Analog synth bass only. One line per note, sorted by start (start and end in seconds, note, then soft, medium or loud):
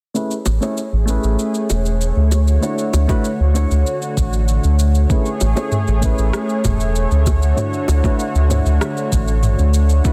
0.46 0.59 A1 medium
0.93 1.18 A1 medium
1.24 1.36 A1 medium
1.70 2.12 E1 medium
2.16 2.58 D2 medium
2.94 3.06 D2 medium
3.40 3.66 D2 medium
3.71 3.84 D2 medium
4.17 4.59 A1 medium
4.64 5.06 D2 medium
5.41 5.54 A1 medium
5.88 6.13 A1 medium
6.18 6.31 A1 medium
6.65 7.07 E1 medium
7.11 7.53 D2 medium
7.88 8.01 D2 medium
8.35 8.60 D2 medium
8.66 8.79 D2 loud
9.12 9.54 A1 medium
9.59 10.01 D2 loud